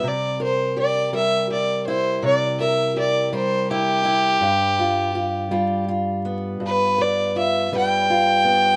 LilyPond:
<<
  \new Staff \with { instrumentName = "Fiddle" } { \time 12/8 \key g \mixolydian \tempo 4. = 55 d''8 c''8 d''8 e''8 d''8 c''8 d''8 e''8 d''8 c''8 g'4~ | g'2 r4 b'8 d''8 e''8 g''4. | }
  \new Staff \with { instrumentName = "Steel-string acoustic guitar" } { \time 12/8 \key g \mixolydian << { r8 bes'8 g'8 bes'8 g'8 e'4 bes'8 g'8 bes'8 e'8 e'8 | r8 f'8 f'8 f'8 f'8 b4 b'8 f'8 b'8 f'8 b8 | } \\ { <c g>4. g4. c4. g4. | g,4. g4. g,4. g4. | } >> }
>>